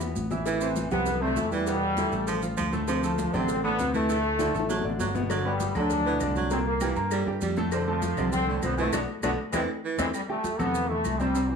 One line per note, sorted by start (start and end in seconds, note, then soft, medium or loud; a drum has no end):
0.00 0.12 E2 medium
0.00 0.25 B3 medium
0.00 0.25 B4 medium
0.00 0.25 B5 medium
0.00 high conga soft
0.00 maracas medium
0.15 0.86 A1 medium
0.15 high conga medium
0.15 maracas medium
0.30 0.43 E3 medium
0.30 0.43 E4 medium
0.30 0.44 E5 medium
0.30 low bongo medium
0.30 high conga medium
0.30 maracas soft
0.46 0.59 E3 medium
0.46 0.70 E3 medium
0.46 0.59 E4 medium
0.46 0.59 E5 medium
0.46 cowbell loud
0.46 high conga soft
0.46 maracas medium
0.61 0.89 E3 loud
0.61 0.86 C4 medium
0.61 0.86 C5 medium
0.61 0.86 C6 medium
0.61 high conga soft
0.61 maracas medium
0.76 cowbell medium
0.76 high conga medium
0.76 maracas medium
0.91 1.33 C2 medium
0.91 1.08 C3 medium
0.91 1.16 G3 medium
0.91 1.19 B3 loud
0.91 1.16 G4 medium
0.91 1.17 G5 medium
0.91 high conga soft
0.91 low conga medium
0.91 maracas soft
1.06 cowbell loud
1.06 high conga soft
1.06 low conga medium
1.06 maracas medium
1.21 1.34 C3 medium
1.21 1.38 D3 medium
1.21 1.52 A3 loud
1.21 1.34 C4 medium
1.21 1.34 C5 medium
1.21 high conga soft
1.36 2.07 E2 medium
1.36 1.62 E3 medium
1.36 1.62 E4 medium
1.36 1.62 E5 medium
1.36 cowbell medium
1.36 high conga medium
1.36 maracas medium
1.51 1.76 E3 medium
1.51 2.69 G3 loud
1.51 high conga medium
1.51 maracas soft
1.67 1.92 B2 medium
1.67 1.92 B3 medium
1.67 1.92 B4 medium
1.67 cowbell loud
1.67 high conga soft
1.67 maracas medium
1.82 high conga soft
1.97 2.13 D3 medium
1.97 2.10 E3 medium
1.97 2.10 E4 medium
1.97 2.10 E5 medium
1.97 cowbell medium
1.97 high conga loud
1.97 maracas medium
2.12 2.54 A1 loud
2.12 2.37 A3 medium
2.12 2.37 A4 medium
2.12 2.38 A5 medium
2.12 maracas soft
2.27 2.43 F3 medium
2.27 cowbell medium
2.27 high conga soft
2.27 maracas medium
2.42 2.68 F3 medium
2.42 2.68 F4 medium
2.42 2.68 F5 medium
2.42 high conga soft
2.42 maracas medium
2.57 3.28 D2 loud
2.57 2.73 F3 medium
2.57 cowbell medium
2.57 high conga medium
2.57 maracas medium
2.73 2.85 A2 medium
2.73 2.85 A3 medium
2.73 2.85 A4 medium
2.73 high conga medium
2.73 maracas soft
2.88 3.01 C3 medium
2.88 3.12 F3 medium
2.88 3.01 C4 medium
2.88 3.01 C5 medium
2.88 cowbell loud
2.88 high conga soft
2.88 maracas medium
3.03 3.31 F3 loud
3.03 3.28 A3 medium
3.03 3.28 A4 medium
3.03 3.28 A5 medium
3.03 high conga soft
3.03 maracas medium
3.18 cowbell medium
3.18 high conga loud
3.18 maracas medium
3.33 3.76 A1 loud
3.33 3.49 C3 medium
3.33 3.58 D3 medium
3.33 3.64 C4 loud
3.33 3.58 D4 medium
3.33 3.59 D5 medium
3.33 high conga soft
3.33 low conga medium
3.33 maracas soft
3.48 cowbell loud
3.48 high conga soft
3.48 maracas medium
3.63 3.76 A2 medium
3.63 3.79 D3 medium
3.63 3.77 A3 medium
3.63 3.92 B3 loud
3.63 3.77 A4 medium
3.63 high conga soft
3.78 4.49 D2 medium
3.78 4.04 C3 medium
3.78 4.04 C4 medium
3.78 4.04 C5 medium
3.78 cowbell medium
3.78 high conga medium
3.78 maracas medium
3.93 4.17 E3 medium
3.93 5.11 A3 loud
3.93 high conga medium
3.93 maracas soft
4.09 4.34 A2 medium
4.09 4.34 A3 medium
4.09 4.34 A4 medium
4.09 cowbell loud
4.09 maracas medium
4.25 high conga soft
4.39 4.52 D3 medium
4.39 4.55 D3 medium
4.39 4.52 D4 medium
4.39 4.52 D5 medium
4.39 cowbell medium
4.39 high bongo loud
4.39 high conga medium
4.39 maracas medium
4.54 4.82 A1 medium
4.54 4.79 A3 medium
4.54 4.79 A4 medium
4.54 4.79 A5 medium
4.54 maracas soft
4.59 high bongo medium
4.69 4.85 F#3 medium
4.69 cowbell loud
4.69 low bongo medium
4.69 high conga soft
4.69 maracas medium
4.80 low bongo medium
4.84 4.98 A1 medium
4.84 5.09 D3 medium
4.84 5.09 D4 medium
4.84 5.10 D5 medium
4.90 low bongo medium
4.99 5.70 G1 loud
4.99 5.16 F#3 medium
4.99 cowbell medium
4.99 low bongo medium
4.99 high conga medium
4.99 maracas medium
5.15 5.27 B2 medium
5.15 5.27 B3 medium
5.15 5.27 B4 medium
5.15 high conga medium
5.15 maracas soft
5.20 low bongo medium
5.30 5.42 D3 medium
5.30 5.54 F#3 medium
5.30 5.43 D4 medium
5.30 5.43 D5 medium
5.30 cowbell loud
5.30 high conga soft
5.30 claves medium
5.30 maracas medium
5.45 5.74 G3 loud
5.45 5.70 B3 medium
5.45 5.70 B4 medium
5.45 5.70 B5 medium
5.45 high conga soft
5.60 cowbell medium
5.60 high conga loud
5.60 maracas medium
5.75 6.17 D2 medium
5.75 5.92 D3 medium
5.75 6.00 F#3 medium
5.75 6.52 D4 loud
5.75 6.00 F#4 medium
5.75 6.01 F#5 medium
5.75 high conga soft
5.75 low conga medium
5.75 claves medium
5.75 maracas soft
5.90 cowbell loud
5.90 high conga soft
5.90 low conga medium
5.90 maracas medium
6.06 6.18 B2 medium
6.06 6.22 E3 medium
6.06 6.18 B3 medium
6.06 6.18 B4 medium
6.06 high conga soft
6.20 6.90 C2 medium
6.20 6.46 D3 medium
6.20 6.46 D4 medium
6.20 6.46 D5 medium
6.20 cowbell medium
6.20 high conga medium
6.20 claves medium
6.20 maracas medium
6.36 6.60 F#3 medium
6.36 high conga medium
6.36 maracas soft
6.50 6.76 A#2 medium
6.50 6.76 A#3 medium
6.50 6.58 C4 loud
6.50 6.76 A#4 medium
6.50 cowbell loud
6.50 high conga soft
6.50 maracas medium
6.66 6.95 A#3 loud
6.66 high conga soft
6.81 6.97 E3 medium
6.81 6.94 G3 medium
6.81 6.94 G4 medium
6.81 6.94 G5 medium
6.81 cowbell medium
6.81 high conga medium
6.81 claves medium
6.81 maracas medium
6.96 7.24 G2 medium
6.96 7.21 A#3 medium
6.96 7.21 A#4 medium
6.96 7.22 A#5 medium
6.96 maracas soft
7.11 7.28 G3 medium
7.11 cowbell loud
7.11 high conga soft
7.11 claves medium
7.11 maracas medium
7.26 7.40 G2 medium
7.26 7.51 G3 medium
7.26 7.52 G4 medium
7.26 7.52 G5 medium
7.26 high conga soft
7.41 8.12 F2 medium
7.41 7.58 G3 medium
7.41 cowbell medium
7.41 high conga medium
7.41 maracas medium
7.57 7.70 A2 medium
7.57 7.70 A3 medium
7.57 7.70 A4 loud
7.57 high conga medium
7.57 maracas soft
7.72 7.85 C3 medium
7.72 7.96 D3 medium
7.72 7.85 C4 medium
7.72 7.85 C5 medium
7.72 cowbell loud
7.72 high conga soft
7.72 claves medium
7.72 maracas medium
7.87 8.29 F3 loud
7.87 8.12 A3 medium
7.87 8.12 A4 medium
7.87 8.12 A5 medium
7.87 high conga soft
8.02 cowbell medium
8.02 high conga loud
8.02 maracas medium
8.17 8.59 C2 loud
8.17 8.34 C3 medium
8.17 8.42 D3 medium
8.17 8.43 D4 medium
8.17 8.43 D5 medium
8.17 high conga soft
8.17 low conga medium
8.17 claves medium
8.17 maracas soft
8.32 8.57 C4 loud
8.32 cowbell loud
8.32 high conga soft
8.32 low conga medium
8.32 maracas medium
8.48 8.60 A2 medium
8.48 8.64 D3 medium
8.48 8.60 A3 medium
8.48 8.60 A4 medium
8.48 high conga soft
8.59 8.91 B1 medium
8.59 8.78 B3 loud
8.59 8.63 C4 medium
8.59 cowbell medium
8.59 high conga loud
8.59 claves medium
8.59 maracas medium
8.63 8.88 D3 medium
8.63 8.88 C4 medium
8.63 8.88 C5 medium
8.78 9.02 E3 medium
8.78 8.92 A3 loud
8.78 high conga medium
8.78 maracas soft
8.92 9.04 B1 medium
8.92 9.00 A3 loud
8.92 9.00 B3 medium
8.92 9.03 B3 loud
8.92 9.00 D4 loud
8.92 9.03 D4 loud
8.92 9.03 F#4 loud
8.92 cowbell loud
8.92 high conga loud
8.92 claves loud
8.92 maracas loud
9.22 9.34 B1 loud
9.22 9.39 D3 medium
9.22 9.30 A3 loud
9.22 9.30 B3 loud
9.22 9.33 B3 loud
9.22 9.30 D4 loud
9.22 9.33 D4 loud
9.22 9.33 F#4 loud
9.22 cowbell loud
9.22 high conga loud
9.22 claves loud
9.22 maracas loud
9.53 9.64 E2 loud
9.53 9.60 E3 loud
9.53 9.70 E3 loud
9.53 9.60 G#3 loud
9.53 9.60 C4 loud
9.53 9.63 C4 medium
9.53 9.63 D4 medium
9.53 9.63 E4 medium
9.53 cowbell loud
9.53 high conga loud
9.53 claves loud
9.53 maracas loud
9.84 10.00 E3 medium
9.98 10.10 E2 medium
9.98 10.06 E3 loud
9.98 10.06 G#3 loud
9.98 10.06 C4 loud
9.98 10.09 C4 loud
9.98 10.09 D4 loud
9.98 10.09 E4 loud
9.98 cowbell loud
9.98 high conga loud
9.98 claves medium
9.98 maracas loud
10.14 10.21 G3 loud
10.14 high conga soft
10.14 claves medium
10.14 maracas medium
10.28 10.54 G3 medium
10.28 10.57 A3 loud
10.28 10.54 G4 medium
10.28 10.54 G5 medium
10.28 high conga soft
10.44 high conga medium
10.44 maracas medium
10.59 11.01 E2 medium
10.59 10.84 C3 medium
10.59 10.84 A3 medium
10.59 10.90 B3 loud
10.59 10.84 A4 medium
10.59 high conga soft
10.59 low conga medium
10.59 claves medium
10.59 maracas soft
10.75 high conga soft
10.75 maracas medium
10.89 11.15 E3 medium
10.89 11.20 A3 loud
10.89 11.15 E4 medium
10.89 11.15 E5 medium
10.89 high conga soft
11.04 11.56 C2 medium
11.04 high conga medium
11.04 claves medium
11.04 maracas medium
11.20 11.33 C3 medium
11.20 11.50 G3 loud
11.20 11.33 C4 medium
11.20 11.33 C5 medium
11.20 high conga medium
11.20 maracas soft
11.35 11.56 C3 medium
11.35 11.56 C4 medium
11.35 11.56 C5 medium
11.35 high conga soft
11.35 maracas medium
11.50 11.56 E3 medium
11.50 high conga soft